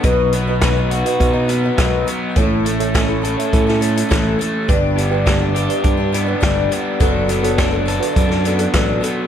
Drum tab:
HH |x-x-x-xxx-x-x-x-|x-xxx-xxx-xxx-x-|x-x-x-xxx-x-x-x-|x-xxx-xxx-xxx-x-|
SD |----o-------o---|----o----o--o---|----o-------o---|----o----o--o---|
BD |o---o---o---o---|o---o---o---o---|o---o---o---o---|o---o---o---o---|